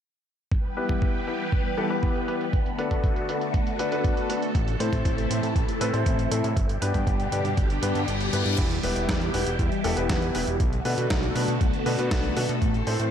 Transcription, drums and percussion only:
0.52 kick, closed hi-hat
0.64 closed hi-hat
0.77 closed hi-hat
0.89 kick, closed hi-hat
1.02 kick, closed hi-hat
1.15 closed hi-hat
1.27 closed hi-hat
1.40 closed hi-hat
1.52 kick, closed hi-hat
1.65 closed hi-hat
1.78 closed hi-hat
1.90 closed hi-hat
2.03 kick, closed hi-hat
2.15 closed hi-hat
2.28 closed hi-hat
2.41 closed hi-hat
2.53 kick, closed hi-hat
2.66 closed hi-hat
2.79 closed hi-hat
2.91 kick, closed hi-hat
3.04 kick, closed hi-hat
3.16 closed hi-hat
3.29 closed hi-hat
3.41 closed hi-hat
3.54 kick, closed hi-hat
3.67 closed hi-hat
3.79 closed hi-hat
3.92 closed hi-hat
4.04 kick, closed hi-hat
4.17 closed hi-hat
4.30 closed hi-hat
4.42 closed hi-hat
4.55 kick, closed hi-hat
4.68 closed hi-hat
4.80 closed hi-hat
4.93 kick, closed hi-hat
5.05 kick, closed hi-hat
5.18 closed hi-hat
5.31 closed hi-hat
5.43 closed hi-hat
5.56 kick, closed hi-hat
5.68 closed hi-hat
5.81 closed hi-hat
5.94 closed hi-hat
6.06 kick, closed hi-hat
6.19 closed hi-hat
6.32 closed hi-hat
6.44 closed hi-hat
6.57 kick, closed hi-hat
6.69 closed hi-hat
6.82 closed hi-hat
6.94 kick, closed hi-hat
7.07 kick, closed hi-hat
7.20 closed hi-hat
7.32 closed hi-hat
7.45 closed hi-hat
7.57 kick, closed hi-hat
7.70 closed hi-hat
7.83 closed hi-hat
7.95 closed hi-hat
8.08 closed hi-hat
8.21 closed hi-hat
8.33 closed hi-hat
8.46 closed hi-hat
8.58 kick, closed hi-hat, crash
8.71 closed hi-hat
8.83 open hi-hat
8.96 closed hi-hat
9.09 kick, snare, closed hi-hat
9.21 closed hi-hat
9.34 open hi-hat
9.47 closed hi-hat
9.59 kick, closed hi-hat
9.72 closed hi-hat
9.84 open hi-hat
9.97 closed hi-hat
10.09 kick, snare, closed hi-hat
10.22 closed hi-hat
10.35 open hi-hat
10.47 closed hi-hat
10.60 kick, closed hi-hat
10.73 closed hi-hat
10.85 open hi-hat
10.98 closed hi-hat
11.10 kick, snare, closed hi-hat
11.23 closed hi-hat
11.36 open hi-hat
11.48 closed hi-hat
11.61 kick, closed hi-hat
11.73 closed hi-hat
11.86 open hi-hat
11.99 closed hi-hat
12.11 kick, snare, closed hi-hat
12.24 closed hi-hat
12.37 open hi-hat
12.49 closed hi-hat
12.62 kick, closed hi-hat
12.74 closed hi-hat
12.87 open hi-hat
13.00 closed hi-hat

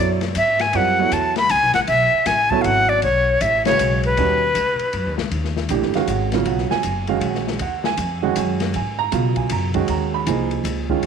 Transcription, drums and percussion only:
0.21 snare, ride
0.35 hi-hat pedal, ride
0.59 snare, ride
0.73 ride
1.12 hi-hat pedal, ride
1.36 snare, ride
1.49 hi-hat pedal, ride
1.74 snare, ride
1.87 ride
2.26 snare, hi-hat pedal, ride
2.51 kick
2.64 ride
3.02 ride
3.41 hi-hat pedal, ride
3.65 snare, ride
3.79 hi-hat pedal, ride
4.03 ride
4.17 ride
4.55 hi-hat pedal, ride
4.79 ride
4.93 ride
5.18 snare
5.31 ride
5.45 snare
5.57 snare
5.69 hi-hat pedal, ride
5.82 snare
5.94 snare, ride
6.08 hi-hat pedal, ride
6.32 snare, ride
6.45 ride
6.58 snare
6.71 snare
6.83 hi-hat pedal, ride
7.07 ride
7.21 ride
7.35 snare
7.47 snare
7.59 ride
7.84 snare
7.97 hi-hat pedal, ride
8.36 hi-hat pedal, ride
8.60 snare, ride
8.74 ride
9.12 hi-hat pedal, ride
9.36 kick, ride
9.50 ride
9.74 kick, ride
9.88 ride
10.27 hi-hat pedal, ride
10.51 ride
10.65 hi-hat pedal, ride
10.90 kick
11.03 ride

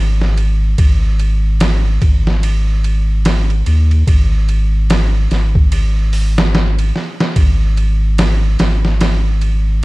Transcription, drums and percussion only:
0.22 snare
0.37 ride
0.78 kick, ride
1.19 ride
1.60 snare, ride
2.02 kick, ride
2.27 snare
2.43 ride
2.84 ride
3.25 snare, ride
3.50 ride
3.66 ride
3.91 ride
4.07 kick, ride
4.49 ride
4.90 snare, ride
5.31 snare, ride
5.55 kick
5.72 ride
6.13 open hi-hat
6.38 snare
6.55 snare
6.79 ride
6.96 snare
7.20 snare
7.36 kick, ride
7.77 ride
8.18 snare, ride
8.59 snare, ride
8.85 snare
9.01 snare, ride
9.41 ride

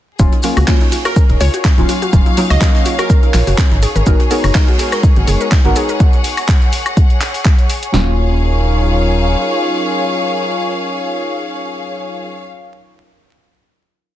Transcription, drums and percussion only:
0.19 kick, closed hi-hat, shaker
0.32 closed hi-hat
0.43 open hi-hat, shaker
0.57 open hi-hat, high woodblock, shaker
0.67 kick, snare, clap, closed hi-hat, open hi-hat, shaker
0.81 closed hi-hat
0.92 open hi-hat, shaker
1.05 snare, closed hi-hat, high woodblock, shaker
1.16 kick, closed hi-hat, shaker
1.30 closed hi-hat
1.41 open hi-hat, shaker
1.54 closed hi-hat, shaker
1.65 kick, snare, clap, closed hi-hat, shaker
1.78 closed hi-hat
1.89 open hi-hat, shaker
2.02 closed hi-hat, shaker
2.13 kick, closed hi-hat, shaker
2.26 closed hi-hat
2.37 open hi-hat, shaker
2.50 open hi-hat, high woodblock, shaker
2.61 kick, snare, clap, closed hi-hat, shaker
2.74 snare, closed hi-hat
2.85 open hi-hat, shaker
2.99 closed hi-hat, high woodblock, shaker
3.10 kick, closed hi-hat, shaker
3.23 closed hi-hat
3.34 clap, open hi-hat, shaker
3.47 open hi-hat, shaker
3.57 kick, snare, clap, shaker
3.71 closed hi-hat
3.82 open hi-hat, shaker
3.96 closed hi-hat, shaker
4.06 kick, closed hi-hat, shaker
4.20 closed hi-hat
4.31 open hi-hat, shaker
4.44 open hi-hat, high woodblock, shaker
4.54 kick, snare, clap, closed hi-hat, open hi-hat, shaker
4.68 closed hi-hat
4.79 open hi-hat, shaker
4.92 snare, closed hi-hat, high woodblock, shaker
5.03 kick, closed hi-hat, shaker
5.16 closed hi-hat
5.27 open hi-hat, shaker
5.41 closed hi-hat, shaker
5.52 kick, snare, clap, closed hi-hat, shaker
5.65 closed hi-hat
5.76 open hi-hat, shaker
5.89 closed hi-hat, shaker
6.00 kick, closed hi-hat, shaker
6.13 closed hi-hat
6.24 open hi-hat, shaker
6.37 open hi-hat, high woodblock, shaker
6.48 kick, clap, closed hi-hat, shaker
6.62 closed hi-hat
6.73 open hi-hat, shaker
6.86 closed hi-hat, high woodblock, shaker
6.97 kick, closed hi-hat, shaker
7.10 closed hi-hat
7.21 clap, open hi-hat, shaker
7.34 open hi-hat, shaker
7.45 kick, clap, closed hi-hat, shaker
7.58 closed hi-hat
7.70 open hi-hat, shaker
7.83 closed hi-hat, shaker
7.94 snare

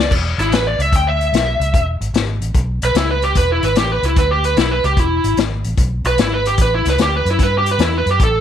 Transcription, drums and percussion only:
0.11 kick, crash
0.39 closed hi-hat
0.52 snare, closed hi-hat
0.80 closed hi-hat
0.92 kick, closed hi-hat
1.21 closed hi-hat
1.34 snare, closed hi-hat
1.61 closed hi-hat
1.74 kick, closed hi-hat
2.01 closed hi-hat
2.14 snare, closed hi-hat
2.42 closed hi-hat
2.54 kick, closed hi-hat
2.82 closed hi-hat
2.95 snare, closed hi-hat
3.22 closed hi-hat
3.35 kick, closed hi-hat
3.63 closed hi-hat
3.75 snare, closed hi-hat
4.03 closed hi-hat
4.16 kick, closed hi-hat
4.44 closed hi-hat
4.57 snare, closed hi-hat
4.84 closed hi-hat
4.97 kick, closed hi-hat
5.24 closed hi-hat
5.37 snare, closed hi-hat
5.64 closed hi-hat
5.77 kick, closed hi-hat
6.05 closed hi-hat
6.18 snare, closed hi-hat
6.45 closed hi-hat
6.58 kick, closed hi-hat
6.85 snare, closed hi-hat
6.98 snare, closed hi-hat
7.26 closed hi-hat
7.39 kick, closed hi-hat
7.66 closed hi-hat
7.79 snare, closed hi-hat
8.06 closed hi-hat
8.20 kick, closed hi-hat

